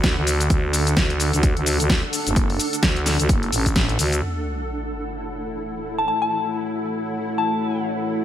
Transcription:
Already playing: fm bass D2, ambient pad D4 A4 F#5
0.04 kick, snare, closed hi-hat, shaker
0.17 fm bass D2
0.27 open hi-hat, shaker
0.40 closed hi-hat, shaker
0.50 fm bass D2, kick, closed hi-hat, shaker
0.73 open hi-hat, shaker
0.87 closed hi-hat, shaker
0.97 fm bass D2, kick, snare, closed hi-hat, shaker
1.10 closed hi-hat
1.20 open hi-hat, shaker
1.33 fm bass D2, closed hi-hat, shaker
1.43 kick, closed hi-hat, shaker
1.57 fm bass D2, closed hi-hat
1.66 open hi-hat, shaker
1.80 fm bass D2, closed hi-hat, shaker
1.90 kick, snare, closed hi-hat, shaker
2.13 open hi-hat, shaker
2.26 fm bass F#1, closed hi-hat, shaker
2.36 kick, closed hi-hat, shaker
2.50 open hi-hat
2.59 open hi-hat, shaker
2.73 closed hi-hat, shaker
2.83 fm bass D2, kick, snare, closed hi-hat, shaker
2.96 closed hi-hat
3.06 snare, open hi-hat, shaker
3.19 fm bass D2, closed hi-hat, shaker
3.29 fm bass F#1, kick, closed hi-hat, shaker
3.43 closed hi-hat
3.52 fm bass A1, open hi-hat, shaker
3.66 kick, closed hi-hat, shaker
3.76 kick, snare, closed hi-hat, shaker
3.89 closed hi-hat
3.99 fm bass D2, open hi-hat, shaker
4.12 closed hi-hat, shaker
4.22 analog synth pad A3 E4 C#5 F#5, ambient pad E4, sub drop
5.98 synth bell A5
6.08 synth bell A5
6.22 synth bell A5
7.38 synth bell A5

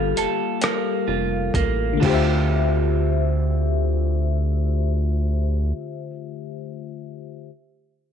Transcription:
Already playing: analog synth bass G1, clean electric guitar D3 G3 F4, fm electric piano G3 A#3 G4 A4 F5
0.17 analog synth bass F1, clean electric guitar A4, closed hi-hat
0.61 clean electric guitar A#3, cross-stick, closed hi-hat
1.08 analog synth bass F1, clean electric guitar F4
1.54 analog synth bass A1, clean electric guitar A#3, kick, closed hi-hat
1.93 fm electric piano D3 A3
2.00 analog synth bass D2, clean electric guitar D3 C4 F4, fm electric piano F4, kick, crash
2.05 clean electric guitar G4, fm electric piano G4
2.10 fm electric piano C5
2.14 fm electric piano E5

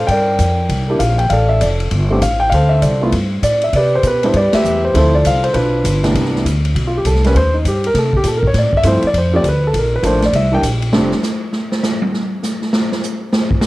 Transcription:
0.07 upright bass G2, grand piano D5 G5, kick, ride
0.11 grand piano A#4
0.39 upright bass F2, kick, hi-hat pedal, ride
0.69 upright bass C2, kick, ride
0.88 grand piano A#3 D4 E4 G4
0.99 upright bass A#1, grand piano F5, kick, hi-hat pedal, ride
1.18 grand piano G5, ride
1.30 upright bass A1, grand piano A4 D5 F5, kick, ride
1.49 grand piano E5
1.61 upright bass F1, grand piano D5, kick, hi-hat pedal, ride
1.80 ride
1.91 upright bass G1, kick, ride
2.10 grand piano A3 C4 D4 G4
2.22 upright bass A1, grand piano F5, kick, hi-hat pedal, ride
2.40 grand piano G5
2.50 upright bass D2, grand piano F5, kick, ride
2.54 grand piano A4 C5
2.69 grand piano E5
2.82 upright bass C2, grand piano D5, kick, hi-hat pedal, ride
3.02 grand piano A3 B3 E4 F4
3.12 upright bass G2, kick, ride
3.42 upright bass A2, grand piano D5, kick, hi-hat pedal, ride
3.62 grand piano E5, ride
3.73 upright bass C3, grand piano D5, kick, ride
3.77 grand piano G4 B4
3.95 grand piano C5
4.03 upright bass B2, kick, hi-hat pedal, ride
4.07 grand piano B4
4.23 grand piano G3 B3 D4 E4 C5, ride
4.33 upright bass G2, grand piano B4 D5, kick, ride
4.37 grand piano G4
4.53 grand piano G4 B4 E5, muted upright bass stroke, snare, ride
4.64 upright bass E2, hi-hat pedal
4.85 grand piano C5
4.94 upright bass D2, grand piano F3 A3 C4 E4 F4 A4 C5, kick, ride
5.15 grand piano D5
5.24 upright bass C2, grand piano F5, kick, hi-hat pedal, ride
5.44 grand piano C5, ride
5.54 upright bass B1, grand piano D4 F4 B4, kick, ride
5.84 upright bass G1, kick, hi-hat pedal, ride
6.03 grand piano C2 E3 G3 B3 D4, snare, ride
6.14 upright bass C2, kick, ride
6.25 snare
6.36 snare
6.45 upright bass D2, kick, hi-hat pedal, ride
6.65 ride
6.75 upright bass B1, kick, ride
6.87 grand piano F4
6.97 grand piano G4
7.05 upright bass C2, grand piano A4, kick, hi-hat pedal, ride
7.15 snare
7.24 grand piano G3 A3 A#3 C#4 B4, snare, ride
7.35 upright bass D#2, grand piano C5, kick, ride
7.54 grand piano D#4
7.65 upright bass G2, grand piano G4, kick, hi-hat pedal, ride
7.84 grand piano A#4, ride
7.94 upright bass C3, kick, snare, ride
7.99 grand piano A4
8.13 grand piano G4, kick
8.24 upright bass A#2, grand piano A4, kick, hi-hat pedal, ride
8.37 grand piano A#4
8.43 kick
8.47 grand piano C#5
8.54 upright bass A2, kick, snare, ride
8.59 grand piano D5
8.73 muted upright bass stroke, kick
8.77 grand piano E5
8.83 upright bass G2, grand piano F3 A3 C4 E4, kick, hi-hat pedal, ride
8.87 grand piano C5
9.02 muted upright bass stroke, ride
9.07 grand piano D5
9.14 upright bass F2, kick, ride
9.18 grand piano C5
9.33 grand piano F3 A3 C4 G4 D5
9.44 upright bass D2, kick, hi-hat pedal, ride
9.48 grand piano B4
9.67 grand piano A4
9.73 upright bass A#1, kick, ride
9.78 grand piano A#4
9.96 grand piano B4
10.03 upright bass A1, grand piano F3 A3 A#3 D4, kick, hi-hat pedal, ride
10.07 grand piano C5
10.22 grand piano D5, snare, ride
10.33 upright bass C2, grand piano E5, kick, ride
10.52 grand piano E3 G3 A#3 D4 G5
10.63 upright bass A#1, kick, hi-hat pedal, ride
10.82 ride
10.92 upright bass F1, grand piano G3 A3 C4 D4, snare
11.12 snare
11.23 snare, hi-hat pedal
11.52 snare
11.72 snare
11.83 snare, hi-hat pedal
12.02 high tom
12.14 snare
12.43 snare, hi-hat pedal
12.62 snare
12.73 snare
12.92 snare
13.03 hi-hat pedal
13.33 snare
13.51 kick
13.61 snare, hi-hat pedal

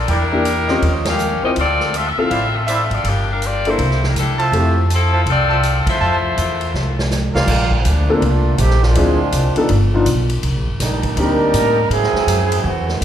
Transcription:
0.08 upright bass E2, saxophone section G3 D4 E4 A#4, trumpet section E4 A#4 D5 G5, ride
0.32 grand piano A#3 D4 E4 G4
0.45 hi-hat pedal, ride
0.68 grand piano C4 C#4 F4 G4, trumpet section F4 C5 C#5 D#5, snare
0.82 upright bass D#2, ride
1.05 saxophone section C#4 G4 A#4 F5, snare, ride
1.19 hi-hat pedal
1.42 grand piano C4 E4 F4 C5, saxophone section C#4 G4 A#4 D#5, muted upright bass stroke
1.56 upright bass D2, saxophone section C4 F4 A4 D5, ride
1.80 snare
1.94 saxophone section C4 F4 A4 E5, hi-hat pedal, ride
2.10 saxophone section E5
2.17 grand piano C4 E4 F4 A4, saxophone section C4 A4 E5 F5, muted upright bass stroke
2.30 upright bass A1, trumpet section E4 C5 D5 F5, ride
2.55 saxophone section C4 F4 A4 E5
2.67 trumpet section E4 C5 D5 E5, hi-hat pedal, ride
2.90 upright bass G#1, saxophone section C4 F4 A4 D5, ride
3.04 upright bass G1, saxophone section F3 A#3 D4, ride
3.08 saxophone section G4
3.31 saxophone section G3 D4 F4 A#4
3.42 saxophone section A#3 F4 G4 D5, hi-hat pedal, ride
3.65 grand piano A#3 D4 E4 A4, saxophone section A#3 E4 G4 C5, ride
3.78 upright bass C2, ride
3.91 snare
4.04 saxophone section G3 D4 E4 A#4, snare
4.15 upright bass C3, saxophone section G3 D4, hi-hat pedal, ride
4.19 saxophone section E4 A4
4.38 trumpet section F4 C5 E5 A5, ride
4.52 upright bass F2, grand piano A3 C4 E4 G4, ride
4.90 saxophone section C4, hi-hat pedal, ride
4.95 saxophone section F3 E4 A4
5.12 trumpet section F4 C5 E5 A5
5.26 upright bass C2, ride
5.30 saxophone section C4 F4 A4 D5
5.49 trumpet section F4 C5 E5 A5
5.63 hi-hat pedal, ride
5.86 saxophone section A3 E4 F4 C5, muted upright bass stroke, kick, ride
6.00 upright bass F2, trumpet section F4 C5 E5 A5
6.37 upright bass E2, hi-hat pedal, ride
6.61 ride
6.74 upright bass C2, snare
6.99 snare
7.11 snare, hi-hat pedal
7.34 upright bass C2, trumpet section F4 A#4 D5 F5, snare
7.47 upright bass A#1, kick, snare, crash
7.71 kick
7.80 trombone section C4
7.85 upright bass D2, trombone section F3 A3 A#3 D4, hi-hat pedal, ride
8.09 grand piano A#3 C4 D4 F4 A4
8.22 upright bass C2, trombone section A3 A#3 D4 F4, ride
8.58 upright bass A#1, trombone section D#3 A3 C4 G4, hi-hat pedal, ride
8.70 snare
8.83 trombone section G#3 C4 D4 F4, snare
8.95 upright bass D2, grand piano F3 C4 D4 E4 G#4, ride
9.32 upright bass C2, hi-hat pedal, ride
9.56 grand piano F3 B3 D4 D#4 A4, muted upright bass stroke, ride
9.69 upright bass G1, ride
9.94 grand piano F3 B3 D4 D#4 F4
10.06 upright bass B1, hi-hat pedal, ride
10.29 ride
10.43 upright bass C2, ride
10.56 upright bass A#1
10.67 upright bass G1
10.80 upright bass A#1, trombone section G3 A#3 D4 D#4, snare, hi-hat pedal, ride
11.03 kick, ride
11.16 upright bass D2, trombone section G3 D4 D#4 A#4, grand piano A#3 C4 D4 D#4 G4, ride
11.54 upright bass A2, hi-hat pedal, ride
11.90 upright bass G#2, trombone section F#3 C4 E4 G#4, ride
12.03 snare
12.13 muted upright bass stroke, snare
12.27 upright bass F#2, hi-hat pedal, ride
12.52 ride
12.64 upright bass E2, trombone section E3 B3 C4 F#4
12.88 snare
13.01 upright bass D2

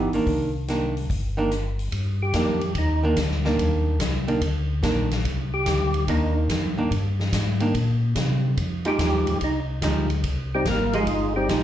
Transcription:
Already playing: hollow-body jazz guitar E3 B3 D#4
0.13 tonewheel organ G1, hollow-body jazz guitar D#3 A#3 D4, open hi-hat
0.26 tonewheel organ C2, kick, open hi-hat
0.68 hollow-body jazz guitar D#3 A#3 D4, snare, closed hi-hat
0.97 open hi-hat
1.09 tonewheel organ G1, kick, open hi-hat
1.37 hollow-body jazz guitar D#3 A#3 D4
1.51 cross-stick, closed hi-hat
1.79 open hi-hat
1.92 tonewheel organ G2, kick, ride
2.22 tonewheel organ G4
2.33 tonewheel organ F2, hollow-body jazz guitar D#3 A#3 D4, kick, snare, hi-hat pedal, ride
2.61 ride
2.75 tonewheel organ D#2 D#4, kick, ride
3.03 hollow-body jazz guitar D#3 A#3 D4
3.16 tonewheel organ D2, kick, snare, hi-hat pedal, ride
3.31 snare
3.45 hollow-body jazz guitar D#3 A#3 D4, snare
3.58 tonewheel organ D#2, kick, ride
4.00 tonewheel organ C2, kick, snare, hi-hat pedal, ride
4.28 hollow-body jazz guitar D#3 A#3 D4, ride
4.41 tonewheel organ D2, kick, ride
4.83 tonewheel organ A#1, hollow-body jazz guitar D#3 A#3 D4, kick, snare, hi-hat pedal, ride
5.11 snare, ride
5.24 tonewheel organ C2, kick, ride
5.54 tonewheel organ G4
5.66 tonewheel organ D2, kick, snare, hi-hat pedal, ride
5.94 ride
6.07 tonewheel organ D#2 D#4, hollow-body jazz guitar D#3 A#3 D4, kick, ride
6.49 tonewheel organ F2, kick, snare, hi-hat pedal, ride
6.77 tonewheel organ F2, hollow-body jazz guitar D#3 A#3 D4
6.90 tonewheel organ G2, kick, ride
7.20 snare
7.33 tonewheel organ G#2, kick, snare, hi-hat pedal, ride
7.60 hollow-body jazz guitar D#3 A#3 D4, ride
7.74 tonewheel organ A#2, kick, ride
8.15 tonewheel organ C3, kick, snare, hi-hat pedal, ride
8.57 tonewheel organ F2, kick, ride
8.85 hollow-body jazz guitar F3 G#3 D#4 G4, tonewheel organ G4, ride
8.99 tonewheel organ D#2, kick, snare, hi-hat pedal, ride
9.27 tonewheel organ D#2, ride
9.40 tonewheel organ C2 D#4, kick, ride
9.82 tonewheel organ D2, hollow-body jazz guitar F3 G#3 D#4 G4, kick, snare, hi-hat pedal, ride
10.10 ride
10.23 tonewheel organ C2, kick, ride
10.54 tonewheel organ G3 C4 D#4 G4
10.65 tonewheel organ G#1 A#3 A#4, kick, snare, hi-hat pedal, ride
10.93 hollow-body jazz guitar F3 G#3 D#4 G4, tonewheel organ G#3 D#4 F4 G#4, ride
11.07 tonewheel organ G1, kick, ride
11.36 tonewheel organ G3 C4 D#4 G4
11.49 tonewheel organ A#1, hollow-body jazz guitar F3 G#3 D#4 G4, kick, snare, hi-hat pedal, ride

